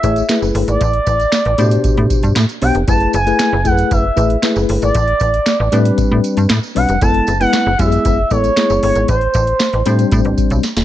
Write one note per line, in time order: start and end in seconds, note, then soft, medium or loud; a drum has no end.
0.00 0.22 A1 loud
0.00 0.22 A3 medium
0.00 0.22 E4 medium
0.00 0.22 G#4 medium
0.00 0.22 C#5 medium
0.00 0.39 E5 medium
0.00 kick medium
0.00 closed hi-hat medium
0.00 tambourine medium
0.16 closed hi-hat soft
0.16 tambourine soft
0.29 0.81 A3 medium
0.29 0.81 E4 medium
0.29 0.81 G#4 medium
0.29 0.81 B4 medium
0.29 snare loud
0.29 clap medium
0.29 closed hi-hat medium
0.29 tambourine loud
0.42 0.51 F#1 medium
0.42 tambourine medium
0.55 0.64 G1 loud
0.55 open hi-hat medium
0.68 0.77 G#1 medium
0.68 2.20 D5 loud
0.68 closed hi-hat medium
0.68 tambourine soft
0.81 1.00 A1 loud
0.81 kick loud
0.81 closed hi-hat medium
0.81 tambourine medium
0.93 closed hi-hat soft
1.06 1.25 A1 loud
1.06 kick medium
1.06 closed hi-hat medium
1.06 tambourine medium
1.20 closed hi-hat soft
1.20 tambourine soft
1.32 snare loud
1.32 clap medium
1.32 closed hi-hat loud
1.32 tambourine loud
1.45 1.55 A1 loud
1.45 closed hi-hat soft
1.58 1.77 A2 loud
1.58 2.34 B2 loud
1.58 2.34 D4 medium
1.58 2.34 G4 medium
1.58 2.34 C5 loud
1.58 closed hi-hat medium
1.58 tambourine medium
1.71 closed hi-hat medium
1.71 tambourine soft
1.84 1.89 A2 soft
1.84 kick loud
1.84 closed hi-hat medium
1.84 tambourine soft
1.97 2.07 A2 medium
1.97 closed hi-hat soft
2.10 kick loud
2.10 closed hi-hat medium
2.10 tambourine medium
2.23 2.33 G2 medium
2.23 closed hi-hat soft
2.23 tambourine soft
2.36 2.46 A2 loud
2.36 snare loud
2.36 clap medium
2.36 closed hi-hat medium
2.36 tambourine medium
2.49 closed hi-hat soft
2.49 tambourine medium
2.61 2.71 B1 medium
2.61 2.81 B3 medium
2.61 2.81 D4 medium
2.61 2.81 G4 medium
2.61 2.81 C5 medium
2.61 2.74 G5 loud
2.61 open hi-hat medium
2.75 2.84 F1 medium
2.75 closed hi-hat medium
2.87 3.06 F#1 loud
2.87 3.16 A3 medium
2.87 3.16 E4 medium
2.87 3.16 G#4 medium
2.87 3.16 B4 medium
2.87 3.12 A5 loud
2.87 kick loud
2.87 closed hi-hat medium
2.87 tambourine medium
3.00 closed hi-hat soft
3.13 3.32 F#1 loud
3.13 3.68 G#5 loud
3.13 closed hi-hat medium
3.13 tambourine medium
3.26 3.55 A3 medium
3.26 3.55 E4 medium
3.26 3.55 G#4 medium
3.26 3.55 B4 medium
3.26 closed hi-hat soft
3.26 tambourine soft
3.39 snare loud
3.39 clap medium
3.39 closed hi-hat loud
3.39 tambourine loud
3.53 3.67 F#1 loud
3.65 3.84 F#2 medium
3.65 4.03 A3 medium
3.65 4.03 E4 medium
3.65 4.03 G#4 medium
3.65 3.72 A4 medium
3.65 3.94 F#5 medium
3.65 kick medium
3.65 closed hi-hat medium
3.65 tambourine medium
3.72 4.06 B4 medium
3.77 closed hi-hat medium
3.77 tambourine soft
3.91 4.10 F#1 loud
3.91 4.56 E5 medium
3.91 kick loud
3.91 closed hi-hat medium
3.91 tambourine medium
4.16 4.36 A1 loud
4.16 4.35 A3 medium
4.16 4.36 E4 medium
4.16 4.36 G#4 medium
4.16 4.36 B4 medium
4.16 kick medium
4.16 closed hi-hat medium
4.16 tambourine medium
4.30 closed hi-hat medium
4.42 4.94 A3 medium
4.42 4.94 E4 medium
4.42 4.95 G#4 medium
4.42 4.95 B4 medium
4.42 snare loud
4.42 clap medium
4.42 closed hi-hat medium
4.42 tambourine medium
4.56 4.65 F#1 medium
4.56 tambourine medium
4.69 4.79 G1 medium
4.69 open hi-hat medium
4.82 4.92 G#1 medium
4.82 6.33 D5 loud
4.82 closed hi-hat soft
4.82 tambourine soft
4.95 5.13 A1 loud
4.95 kick loud
4.95 closed hi-hat medium
4.95 tambourine medium
5.08 closed hi-hat soft
5.20 5.39 A1 loud
5.20 kick medium
5.20 closed hi-hat medium
5.20 tambourine medium
5.34 closed hi-hat soft
5.46 snare loud
5.46 clap medium
5.46 closed hi-hat medium
5.46 tambourine loud
5.60 5.69 A1 loud
5.72 5.91 A2 loud
5.72 6.47 G3 loud
5.72 6.48 C4 medium
5.72 6.48 D4 medium
5.72 6.48 B4 loud
5.72 closed hi-hat medium
5.72 tambourine medium
5.85 closed hi-hat medium
5.98 6.03 A2 soft
5.98 kick loud
5.98 closed hi-hat medium
5.98 tambourine soft
6.11 6.21 A2 loud
6.24 closed hi-hat medium
6.24 tambourine medium
6.37 6.47 G2 medium
6.37 closed hi-hat soft
6.37 tambourine soft
6.49 6.60 A2 loud
6.49 snare loud
6.49 clap medium
6.49 closed hi-hat medium
6.49 tambourine medium
6.63 tambourine medium
6.75 6.86 B1 medium
6.75 6.94 G3 medium
6.75 6.94 C4 medium
6.75 6.95 D4 medium
6.75 6.95 B4 medium
6.75 7.00 F#5 loud
6.75 open hi-hat medium
6.89 6.98 F1 medium
6.89 closed hi-hat medium
6.89 tambourine soft
7.01 7.20 F#1 loud
7.01 7.30 G#3 medium
7.01 7.30 B3 medium
7.01 7.30 E4 medium
7.01 7.30 A4 medium
7.01 7.38 A5 loud
7.01 kick loud
7.01 closed hi-hat medium
7.01 tambourine medium
7.14 closed hi-hat soft
7.27 7.46 F#1 loud
7.27 closed hi-hat medium
7.27 tambourine medium
7.40 7.68 G#3 medium
7.40 7.69 B3 medium
7.40 7.69 E4 medium
7.40 7.69 B4 loud
7.40 7.80 F#5 loud
7.40 closed hi-hat soft
7.40 tambourine soft
7.53 snare loud
7.53 clap medium
7.53 closed hi-hat medium
7.53 tambourine loud
7.66 7.76 F#1 loud
7.79 7.98 F#2 loud
7.79 8.17 G#3 medium
7.79 8.17 B3 medium
7.79 8.17 E4 medium
7.79 7.86 G4 medium
7.79 8.32 E5 loud
7.79 kick medium
7.79 closed hi-hat medium
7.79 tambourine medium
7.86 8.20 G#4 medium
7.92 closed hi-hat medium
7.92 tambourine soft
8.05 8.24 F#1 medium
8.05 kick loud
8.05 closed hi-hat medium
8.05 tambourine medium
8.30 8.50 A1 medium
8.30 8.49 G#3 medium
8.30 8.50 B3 medium
8.30 8.50 E4 medium
8.30 8.50 A4 medium
8.30 8.82 C#5 loud
8.30 kick loud
8.30 closed hi-hat medium
8.30 tambourine medium
8.44 closed hi-hat medium
8.44 tambourine soft
8.56 9.08 G#3 medium
8.56 9.08 B3 medium
8.56 9.09 E4 medium
8.56 9.09 G#4 medium
8.56 snare loud
8.56 clap medium
8.56 closed hi-hat medium
8.56 tambourine medium
8.70 8.79 F#1 medium
8.70 tambourine medium
8.83 8.92 G1 loud
8.83 9.07 C#5 loud
8.83 open hi-hat medium
8.95 9.05 G#1 medium
8.95 closed hi-hat medium
8.95 tambourine soft
9.08 9.27 A1 loud
9.08 10.60 C5 medium
9.08 kick loud
9.08 closed hi-hat medium
9.08 tambourine medium
9.21 closed hi-hat soft
9.34 9.53 A1 loud
9.34 kick loud
9.34 closed hi-hat medium
9.34 tambourine medium
9.47 closed hi-hat soft
9.60 snare loud
9.60 clap medium
9.60 closed hi-hat loud
9.60 tambourine loud
9.73 9.83 A1 loud
9.73 closed hi-hat soft
9.86 10.05 A2 loud
9.86 10.61 G3 loud
9.86 10.61 C4 medium
9.86 10.61 D4 medium
9.86 10.62 C5 loud
9.86 closed hi-hat medium
9.86 tambourine medium
9.99 closed hi-hat medium
9.99 tambourine soft
10.12 10.21 A2 loud
10.12 kick loud
10.12 closed hi-hat medium
10.12 tambourine medium
10.25 10.34 A1 medium
10.25 closed hi-hat soft
10.38 kick loud
10.38 closed hi-hat medium
10.38 tambourine medium
10.50 10.60 B1 loud
10.50 closed hi-hat medium
10.50 tambourine soft
10.63 snare medium
10.63 closed hi-hat medium
10.63 tambourine medium
10.77 10.85 D#1 medium
10.77 snare medium
10.77 closed hi-hat soft
10.77 tambourine medium